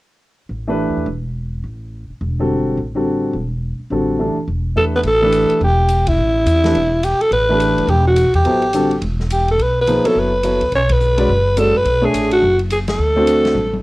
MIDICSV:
0, 0, Header, 1, 6, 480
1, 0, Start_track
1, 0, Tempo, 283822
1, 856, Time_signature, 4, 2, 24, 8
1, 23381, End_track
2, 0, Start_track
2, 0, Title_t, "Alto saxophone"
2, 0, Program_c, 0, 65
2, 8068, Note_on_c, 0, 69, 74
2, 8198, Note_off_c, 0, 69, 0
2, 8386, Note_on_c, 0, 71, 77
2, 8461, Note_off_c, 0, 71, 0
2, 8575, Note_on_c, 0, 69, 96
2, 9448, Note_off_c, 0, 69, 0
2, 9536, Note_on_c, 0, 67, 85
2, 10290, Note_on_c, 0, 64, 93
2, 10316, Note_off_c, 0, 67, 0
2, 11911, Note_on_c, 0, 67, 74
2, 11936, Note_off_c, 0, 64, 0
2, 12198, Note_on_c, 0, 69, 87
2, 12223, Note_off_c, 0, 67, 0
2, 12376, Note_off_c, 0, 69, 0
2, 12396, Note_on_c, 0, 71, 99
2, 13352, Note_on_c, 0, 67, 81
2, 13377, Note_off_c, 0, 71, 0
2, 13637, Note_off_c, 0, 67, 0
2, 13650, Note_on_c, 0, 66, 80
2, 14085, Note_off_c, 0, 66, 0
2, 14128, Note_on_c, 0, 67, 81
2, 15219, Note_off_c, 0, 67, 0
2, 15764, Note_on_c, 0, 67, 72
2, 16023, Note_off_c, 0, 67, 0
2, 16082, Note_on_c, 0, 69, 80
2, 16276, Note_on_c, 0, 71, 84
2, 16302, Note_off_c, 0, 69, 0
2, 16538, Note_off_c, 0, 71, 0
2, 16591, Note_on_c, 0, 71, 78
2, 17030, Note_on_c, 0, 69, 78
2, 17056, Note_off_c, 0, 71, 0
2, 17237, Note_on_c, 0, 71, 81
2, 17262, Note_off_c, 0, 69, 0
2, 18162, Note_off_c, 0, 71, 0
2, 18190, Note_on_c, 0, 73, 93
2, 18477, Note_on_c, 0, 71, 95
2, 18502, Note_off_c, 0, 73, 0
2, 19598, Note_on_c, 0, 69, 83
2, 19623, Note_off_c, 0, 71, 0
2, 19910, Note_on_c, 0, 71, 97
2, 19936, Note_off_c, 0, 69, 0
2, 20388, Note_on_c, 0, 68, 84
2, 20413, Note_off_c, 0, 71, 0
2, 20834, Note_off_c, 0, 68, 0
2, 20845, Note_on_c, 0, 66, 84
2, 21282, Note_off_c, 0, 66, 0
2, 21513, Note_on_c, 0, 68, 71
2, 21641, Note_off_c, 0, 68, 0
2, 21810, Note_on_c, 0, 69, 92
2, 23355, Note_off_c, 0, 69, 0
2, 23381, End_track
3, 0, Start_track
3, 0, Title_t, "Grand piano"
3, 0, Program_c, 1, 0
3, 1140, Note_on_c, 1, 52, 61
3, 1146, Note_on_c, 1, 57, 54
3, 1157, Note_on_c, 1, 62, 52
3, 1167, Note_on_c, 1, 67, 53
3, 1172, Note_on_c, 1, 71, 67
3, 1774, Note_off_c, 1, 52, 0
3, 1777, Note_off_c, 1, 57, 0
3, 1782, Note_off_c, 1, 62, 0
3, 1787, Note_off_c, 1, 67, 0
3, 1790, Note_off_c, 1, 71, 0
3, 4043, Note_on_c, 1, 50, 49
3, 4047, Note_on_c, 1, 55, 44
3, 4059, Note_on_c, 1, 60, 47
3, 4065, Note_on_c, 1, 66, 47
3, 4065, Note_on_c, 1, 69, 52
3, 4666, Note_off_c, 1, 50, 0
3, 4667, Note_off_c, 1, 55, 0
3, 4673, Note_off_c, 1, 60, 0
3, 4676, Note_off_c, 1, 66, 0
3, 4676, Note_off_c, 1, 69, 0
3, 4990, Note_on_c, 1, 50, 52
3, 4992, Note_on_c, 1, 55, 43
3, 5002, Note_on_c, 1, 66, 47
3, 5004, Note_on_c, 1, 60, 45
3, 5021, Note_on_c, 1, 69, 51
3, 5619, Note_off_c, 1, 50, 0
3, 5620, Note_off_c, 1, 55, 0
3, 5625, Note_off_c, 1, 66, 0
3, 5626, Note_off_c, 1, 60, 0
3, 5634, Note_off_c, 1, 69, 0
3, 6607, Note_on_c, 1, 50, 51
3, 6616, Note_on_c, 1, 55, 44
3, 6624, Note_on_c, 1, 60, 45
3, 6632, Note_on_c, 1, 66, 46
3, 6635, Note_on_c, 1, 69, 52
3, 7073, Note_off_c, 1, 50, 0
3, 7078, Note_off_c, 1, 55, 0
3, 7082, Note_off_c, 1, 60, 0
3, 7085, Note_on_c, 1, 52, 38
3, 7086, Note_off_c, 1, 66, 0
3, 7086, Note_off_c, 1, 69, 0
3, 7088, Note_on_c, 1, 57, 41
3, 7099, Note_on_c, 1, 67, 39
3, 7100, Note_on_c, 1, 62, 40
3, 7111, Note_on_c, 1, 69, 42
3, 7357, Note_off_c, 1, 52, 0
3, 7359, Note_off_c, 1, 57, 0
3, 7364, Note_off_c, 1, 67, 0
3, 7365, Note_off_c, 1, 62, 0
3, 7370, Note_off_c, 1, 69, 0
3, 8043, Note_on_c, 1, 52, 41
3, 8050, Note_on_c, 1, 57, 40
3, 8060, Note_on_c, 1, 62, 36
3, 8060, Note_on_c, 1, 67, 36
3, 8078, Note_on_c, 1, 71, 47
3, 8529, Note_off_c, 1, 52, 0
3, 8532, Note_off_c, 1, 57, 0
3, 8538, Note_off_c, 1, 62, 0
3, 8538, Note_off_c, 1, 67, 0
3, 8546, Note_off_c, 1, 71, 0
3, 8821, Note_on_c, 1, 52, 67
3, 8833, Note_on_c, 1, 57, 57
3, 8834, Note_on_c, 1, 62, 56
3, 8843, Note_on_c, 1, 67, 56
3, 8844, Note_on_c, 1, 71, 64
3, 9452, Note_off_c, 1, 52, 0
3, 9458, Note_off_c, 1, 57, 0
3, 9459, Note_off_c, 1, 62, 0
3, 9464, Note_off_c, 1, 67, 0
3, 9464, Note_off_c, 1, 71, 0
3, 11223, Note_on_c, 1, 52, 55
3, 11227, Note_on_c, 1, 57, 44
3, 11247, Note_on_c, 1, 62, 44
3, 11248, Note_on_c, 1, 67, 52
3, 11255, Note_on_c, 1, 71, 57
3, 11391, Note_off_c, 1, 52, 0
3, 11393, Note_off_c, 1, 57, 0
3, 11403, Note_off_c, 1, 62, 0
3, 11403, Note_off_c, 1, 67, 0
3, 11407, Note_off_c, 1, 71, 0
3, 12668, Note_on_c, 1, 52, 65
3, 12676, Note_on_c, 1, 57, 64
3, 12691, Note_on_c, 1, 62, 63
3, 12696, Note_on_c, 1, 67, 61
3, 12704, Note_on_c, 1, 71, 67
3, 13294, Note_off_c, 1, 52, 0
3, 13298, Note_off_c, 1, 57, 0
3, 13305, Note_off_c, 1, 62, 0
3, 13307, Note_off_c, 1, 67, 0
3, 13311, Note_off_c, 1, 71, 0
3, 14296, Note_on_c, 1, 54, 49
3, 14297, Note_on_c, 1, 59, 51
3, 14305, Note_on_c, 1, 64, 47
3, 14318, Note_on_c, 1, 69, 52
3, 14324, Note_on_c, 1, 72, 56
3, 14559, Note_off_c, 1, 54, 0
3, 14559, Note_off_c, 1, 59, 0
3, 14563, Note_off_c, 1, 64, 0
3, 14570, Note_off_c, 1, 69, 0
3, 14573, Note_off_c, 1, 72, 0
3, 14774, Note_on_c, 1, 50, 59
3, 14778, Note_on_c, 1, 55, 53
3, 14788, Note_on_c, 1, 60, 52
3, 14793, Note_on_c, 1, 66, 52
3, 14804, Note_on_c, 1, 69, 67
3, 15038, Note_off_c, 1, 50, 0
3, 15040, Note_off_c, 1, 55, 0
3, 15044, Note_off_c, 1, 60, 0
3, 15047, Note_off_c, 1, 66, 0
3, 15053, Note_off_c, 1, 69, 0
3, 16700, Note_on_c, 1, 53, 57
3, 16703, Note_on_c, 1, 58, 53
3, 16708, Note_on_c, 1, 63, 49
3, 16720, Note_on_c, 1, 68, 49
3, 16727, Note_on_c, 1, 72, 57
3, 16961, Note_off_c, 1, 53, 0
3, 16962, Note_off_c, 1, 58, 0
3, 16965, Note_off_c, 1, 63, 0
3, 16971, Note_off_c, 1, 68, 0
3, 16974, Note_off_c, 1, 72, 0
3, 16983, Note_on_c, 1, 54, 46
3, 16990, Note_on_c, 1, 59, 44
3, 16991, Note_on_c, 1, 64, 45
3, 17001, Note_on_c, 1, 69, 44
3, 17007, Note_on_c, 1, 73, 60
3, 17404, Note_off_c, 1, 54, 0
3, 17408, Note_off_c, 1, 59, 0
3, 17408, Note_off_c, 1, 64, 0
3, 17413, Note_off_c, 1, 69, 0
3, 17416, Note_off_c, 1, 73, 0
3, 17644, Note_on_c, 1, 54, 49
3, 17654, Note_on_c, 1, 59, 39
3, 17659, Note_on_c, 1, 64, 40
3, 17669, Note_on_c, 1, 73, 48
3, 17673, Note_on_c, 1, 69, 42
3, 17913, Note_off_c, 1, 54, 0
3, 17918, Note_off_c, 1, 59, 0
3, 17920, Note_off_c, 1, 64, 0
3, 17925, Note_off_c, 1, 73, 0
3, 17927, Note_off_c, 1, 69, 0
3, 18896, Note_on_c, 1, 56, 64
3, 18898, Note_on_c, 1, 61, 60
3, 18915, Note_on_c, 1, 66, 59
3, 18923, Note_on_c, 1, 71, 60
3, 18923, Note_on_c, 1, 74, 67
3, 19066, Note_off_c, 1, 56, 0
3, 19067, Note_off_c, 1, 61, 0
3, 19075, Note_off_c, 1, 66, 0
3, 19079, Note_off_c, 1, 71, 0
3, 19079, Note_off_c, 1, 74, 0
3, 19559, Note_on_c, 1, 56, 52
3, 19570, Note_on_c, 1, 61, 46
3, 19572, Note_on_c, 1, 66, 49
3, 19576, Note_on_c, 1, 71, 44
3, 19581, Note_on_c, 1, 74, 50
3, 19831, Note_off_c, 1, 56, 0
3, 19836, Note_off_c, 1, 61, 0
3, 19837, Note_off_c, 1, 66, 0
3, 19839, Note_off_c, 1, 71, 0
3, 19841, Note_off_c, 1, 74, 0
3, 20320, Note_on_c, 1, 57, 64
3, 20324, Note_on_c, 1, 62, 53
3, 20337, Note_on_c, 1, 68, 58
3, 20337, Note_on_c, 1, 73, 59
3, 20353, Note_on_c, 1, 76, 64
3, 20960, Note_off_c, 1, 57, 0
3, 20962, Note_off_c, 1, 62, 0
3, 20969, Note_off_c, 1, 68, 0
3, 20969, Note_off_c, 1, 73, 0
3, 20976, Note_off_c, 1, 76, 0
3, 22260, Note_on_c, 1, 57, 66
3, 22261, Note_on_c, 1, 60, 62
3, 22277, Note_on_c, 1, 62, 62
3, 22285, Note_on_c, 1, 66, 61
3, 22287, Note_on_c, 1, 72, 76
3, 22890, Note_off_c, 1, 57, 0
3, 22891, Note_off_c, 1, 60, 0
3, 22899, Note_off_c, 1, 62, 0
3, 22903, Note_off_c, 1, 66, 0
3, 22904, Note_off_c, 1, 72, 0
3, 23381, End_track
4, 0, Start_track
4, 0, Title_t, "Upright bass"
4, 0, Program_c, 2, 32
4, 831, Note_on_c, 2, 33, 68
4, 1438, Note_off_c, 2, 33, 0
4, 1499, Note_on_c, 2, 38, 48
4, 1627, Note_off_c, 2, 38, 0
4, 1637, Note_on_c, 2, 40, 57
4, 1783, Note_off_c, 2, 40, 0
4, 1793, Note_on_c, 2, 28, 77
4, 2717, Note_off_c, 2, 28, 0
4, 2766, Note_on_c, 2, 33, 65
4, 3494, Note_off_c, 2, 33, 0
4, 3735, Note_on_c, 2, 28, 79
4, 4648, Note_off_c, 2, 28, 0
4, 4692, Note_on_c, 2, 33, 72
4, 5607, Note_off_c, 2, 33, 0
4, 5644, Note_on_c, 2, 28, 77
4, 6372, Note_off_c, 2, 28, 0
4, 6604, Note_on_c, 2, 33, 68
4, 7331, Note_off_c, 2, 33, 0
4, 7570, Note_on_c, 2, 28, 77
4, 8019, Note_off_c, 2, 28, 0
4, 8049, Note_on_c, 2, 40, 55
4, 8498, Note_off_c, 2, 40, 0
4, 8521, Note_on_c, 2, 33, 76
4, 9249, Note_off_c, 2, 33, 0
4, 9485, Note_on_c, 2, 28, 86
4, 10400, Note_off_c, 2, 28, 0
4, 10453, Note_on_c, 2, 33, 80
4, 10899, Note_off_c, 2, 33, 0
4, 10923, Note_on_c, 2, 40, 66
4, 11373, Note_off_c, 2, 40, 0
4, 11399, Note_on_c, 2, 28, 83
4, 12126, Note_off_c, 2, 28, 0
4, 12360, Note_on_c, 2, 33, 80
4, 13086, Note_off_c, 2, 33, 0
4, 13136, Note_on_c, 2, 31, 64
4, 13302, Note_off_c, 2, 31, 0
4, 13312, Note_on_c, 2, 28, 89
4, 13915, Note_off_c, 2, 28, 0
4, 13958, Note_on_c, 2, 36, 59
4, 14100, Note_off_c, 2, 36, 0
4, 14110, Note_on_c, 2, 40, 61
4, 14264, Note_off_c, 2, 40, 0
4, 14274, Note_on_c, 2, 33, 68
4, 15192, Note_off_c, 2, 33, 0
4, 15243, Note_on_c, 2, 28, 88
4, 16157, Note_off_c, 2, 28, 0
4, 16200, Note_on_c, 2, 35, 64
4, 16925, Note_off_c, 2, 35, 0
4, 17168, Note_on_c, 2, 30, 84
4, 17890, Note_off_c, 2, 30, 0
4, 17944, Note_on_c, 2, 36, 61
4, 18115, Note_off_c, 2, 36, 0
4, 18130, Note_on_c, 2, 35, 79
4, 19041, Note_off_c, 2, 35, 0
4, 19079, Note_on_c, 2, 30, 87
4, 19806, Note_off_c, 2, 30, 0
4, 19862, Note_on_c, 2, 42, 69
4, 20024, Note_off_c, 2, 42, 0
4, 20034, Note_on_c, 2, 35, 68
4, 20488, Note_off_c, 2, 35, 0
4, 20519, Note_on_c, 2, 33, 61
4, 20970, Note_off_c, 2, 33, 0
4, 21007, Note_on_c, 2, 30, 100
4, 21920, Note_off_c, 2, 30, 0
4, 21964, Note_on_c, 2, 38, 77
4, 22880, Note_off_c, 2, 38, 0
4, 22916, Note_on_c, 2, 33, 80
4, 23381, Note_off_c, 2, 33, 0
4, 23381, End_track
5, 0, Start_track
5, 0, Title_t, "Muted upright bass strokes"
5, 3551, Note_on_c, 9, 29, 31
5, 3720, Note_off_c, 9, 29, 0
5, 6422, Note_on_c, 9, 29, 34
5, 6591, Note_off_c, 9, 29, 0
5, 7385, Note_on_c, 9, 29, 32
5, 7554, Note_off_c, 9, 29, 0
5, 9310, Note_on_c, 9, 29, 34
5, 9480, Note_off_c, 9, 29, 0
5, 12174, Note_on_c, 9, 29, 35
5, 12343, Note_off_c, 9, 29, 0
5, 16992, Note_on_c, 9, 29, 33
5, 17161, Note_off_c, 9, 29, 0
5, 23381, End_track
6, 0, Start_track
6, 0, Title_t, "Drums"
6, 8512, Note_on_c, 9, 51, 49
6, 8681, Note_off_c, 9, 51, 0
6, 9003, Note_on_c, 9, 44, 47
6, 9003, Note_on_c, 9, 51, 62
6, 9173, Note_off_c, 9, 44, 0
6, 9173, Note_off_c, 9, 51, 0
6, 9295, Note_on_c, 9, 51, 41
6, 9464, Note_off_c, 9, 51, 0
6, 9486, Note_on_c, 9, 51, 43
6, 9655, Note_off_c, 9, 51, 0
6, 9953, Note_on_c, 9, 44, 59
6, 9953, Note_on_c, 9, 51, 61
6, 10123, Note_off_c, 9, 44, 0
6, 10123, Note_off_c, 9, 51, 0
6, 10261, Note_on_c, 9, 51, 70
6, 10268, Note_on_c, 9, 36, 79
6, 10430, Note_off_c, 9, 51, 0
6, 10437, Note_off_c, 9, 36, 0
6, 10934, Note_on_c, 9, 44, 51
6, 10934, Note_on_c, 9, 51, 66
6, 11103, Note_off_c, 9, 44, 0
6, 11103, Note_off_c, 9, 51, 0
6, 11228, Note_on_c, 9, 51, 39
6, 11236, Note_on_c, 9, 38, 49
6, 11397, Note_off_c, 9, 51, 0
6, 11405, Note_off_c, 9, 38, 0
6, 11412, Note_on_c, 9, 51, 47
6, 11581, Note_off_c, 9, 51, 0
6, 11890, Note_on_c, 9, 44, 51
6, 11890, Note_on_c, 9, 51, 71
6, 12059, Note_off_c, 9, 44, 0
6, 12059, Note_off_c, 9, 51, 0
6, 12192, Note_on_c, 9, 51, 42
6, 12361, Note_off_c, 9, 51, 0
6, 12376, Note_on_c, 9, 51, 45
6, 12545, Note_off_c, 9, 51, 0
6, 12852, Note_on_c, 9, 44, 50
6, 12852, Note_on_c, 9, 51, 64
6, 13021, Note_off_c, 9, 44, 0
6, 13021, Note_off_c, 9, 51, 0
6, 13155, Note_on_c, 9, 51, 40
6, 13324, Note_off_c, 9, 51, 0
6, 13330, Note_on_c, 9, 51, 46
6, 13499, Note_off_c, 9, 51, 0
6, 13801, Note_on_c, 9, 44, 61
6, 13801, Note_on_c, 9, 51, 64
6, 13970, Note_off_c, 9, 44, 0
6, 13970, Note_off_c, 9, 51, 0
6, 14099, Note_on_c, 9, 51, 44
6, 14268, Note_off_c, 9, 51, 0
6, 14286, Note_on_c, 9, 51, 49
6, 14455, Note_off_c, 9, 51, 0
6, 14577, Note_on_c, 9, 51, 39
6, 14746, Note_off_c, 9, 51, 0
6, 14760, Note_on_c, 9, 44, 61
6, 14760, Note_on_c, 9, 51, 65
6, 14929, Note_off_c, 9, 44, 0
6, 14929, Note_off_c, 9, 51, 0
6, 15065, Note_on_c, 9, 51, 38
6, 15234, Note_off_c, 9, 51, 0
6, 15245, Note_on_c, 9, 51, 49
6, 15414, Note_off_c, 9, 51, 0
6, 15553, Note_on_c, 9, 38, 29
6, 15722, Note_off_c, 9, 38, 0
6, 15731, Note_on_c, 9, 44, 59
6, 15731, Note_on_c, 9, 51, 69
6, 15900, Note_off_c, 9, 44, 0
6, 15900, Note_off_c, 9, 51, 0
6, 16032, Note_on_c, 9, 51, 38
6, 16201, Note_off_c, 9, 51, 0
6, 16221, Note_on_c, 9, 51, 48
6, 16390, Note_off_c, 9, 51, 0
6, 16693, Note_on_c, 9, 44, 50
6, 16693, Note_on_c, 9, 51, 61
6, 16862, Note_off_c, 9, 44, 0
6, 16862, Note_off_c, 9, 51, 0
6, 16995, Note_on_c, 9, 51, 64
6, 17164, Note_off_c, 9, 51, 0
6, 17643, Note_on_c, 9, 44, 55
6, 17643, Note_on_c, 9, 51, 64
6, 17812, Note_off_c, 9, 44, 0
6, 17812, Note_off_c, 9, 51, 0
6, 17943, Note_on_c, 9, 51, 41
6, 18112, Note_off_c, 9, 51, 0
6, 18128, Note_on_c, 9, 51, 45
6, 18298, Note_off_c, 9, 51, 0
6, 18423, Note_on_c, 9, 51, 62
6, 18432, Note_on_c, 9, 36, 72
6, 18592, Note_off_c, 9, 51, 0
6, 18602, Note_off_c, 9, 36, 0
6, 18606, Note_on_c, 9, 44, 59
6, 18775, Note_off_c, 9, 44, 0
6, 18903, Note_on_c, 9, 51, 58
6, 19072, Note_off_c, 9, 51, 0
6, 19563, Note_on_c, 9, 44, 69
6, 19563, Note_on_c, 9, 51, 70
6, 19732, Note_off_c, 9, 44, 0
6, 19732, Note_off_c, 9, 51, 0
6, 20049, Note_on_c, 9, 51, 47
6, 20218, Note_off_c, 9, 51, 0
6, 20531, Note_on_c, 9, 44, 63
6, 20531, Note_on_c, 9, 51, 69
6, 20700, Note_off_c, 9, 44, 0
6, 20700, Note_off_c, 9, 51, 0
6, 20822, Note_on_c, 9, 51, 56
6, 20991, Note_off_c, 9, 51, 0
6, 21292, Note_on_c, 9, 51, 39
6, 21461, Note_off_c, 9, 51, 0
6, 21482, Note_on_c, 9, 44, 59
6, 21482, Note_on_c, 9, 51, 63
6, 21651, Note_off_c, 9, 44, 0
6, 21651, Note_off_c, 9, 51, 0
6, 21775, Note_on_c, 9, 51, 59
6, 21784, Note_on_c, 9, 38, 73
6, 21944, Note_off_c, 9, 51, 0
6, 21953, Note_off_c, 9, 38, 0
6, 22445, Note_on_c, 9, 44, 64
6, 22445, Note_on_c, 9, 51, 66
6, 22614, Note_off_c, 9, 44, 0
6, 22614, Note_off_c, 9, 51, 0
6, 22747, Note_on_c, 9, 51, 41
6, 22756, Note_on_c, 9, 38, 47
6, 22916, Note_off_c, 9, 51, 0
6, 22925, Note_off_c, 9, 38, 0
6, 22940, Note_on_c, 9, 48, 37
6, 23109, Note_off_c, 9, 48, 0
6, 23229, Note_on_c, 9, 48, 40
6, 23381, Note_off_c, 9, 48, 0
6, 23381, End_track
0, 0, End_of_file